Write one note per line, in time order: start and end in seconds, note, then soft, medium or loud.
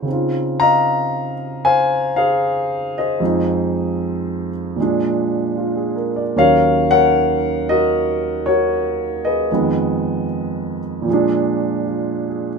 0.02 3.18 C#3 medium
0.02 3.20 C4 soft
0.09 3.20 D#4 soft
0.09 3.24 F4 soft
0.60 2.14 D#5 medium
0.60 1.64 F5 medium
0.60 1.34 A#5 loud
1.65 2.16 C5 medium
1.65 2.15 F5 medium
1.65 2.18 G#5 loud
2.16 2.98 G#4 medium
2.16 2.98 C5 medium
2.16 2.97 F5 medium
2.98 4.50 G#4 medium
2.98 4.50 C5 medium
2.98 4.49 D#5 medium
3.20 4.77 F2 medium
3.20 4.76 F3 soft
3.20 4.78 G#3 soft
3.20 4.78 D#4 medium
4.76 6.34 A#2 medium
4.76 6.35 F3 medium
4.80 6.36 G#3 medium
4.80 6.37 D4 medium
5.57 5.93 F4 soft
5.76 6.10 G#4 soft
5.96 6.20 A#4 soft
6.16 6.43 D5 medium
6.36 9.50 D#2 medium
6.36 9.50 D#3 soft
6.36 9.50 F#3 soft
6.36 9.51 C#4 medium
6.36 6.90 A#4 medium
6.36 6.89 C#5 medium
6.36 6.86 F5 medium
6.91 7.69 A#4 medium
6.91 8.42 C#5 medium
6.91 7.63 F#5 loud
7.69 8.46 F#4 medium
7.69 8.47 A#4 medium
7.69 8.48 D#5 medium
8.46 9.47 F#4 medium
8.46 9.47 A#4 medium
8.46 9.26 C#5 medium
9.25 10.78 G#4 medium
9.25 10.78 B4 medium
9.25 10.25 D#5 medium
9.51 11.08 F2 medium
9.51 11.08 D#3 medium
9.51 11.08 G#3 medium
9.51 11.09 B3 medium
11.02 12.59 A#2 medium
11.02 12.59 F3 medium
11.10 12.59 G#3 medium
11.10 12.59 D4 medium
11.87 12.48 F4 soft
12.29 12.59 G#4 soft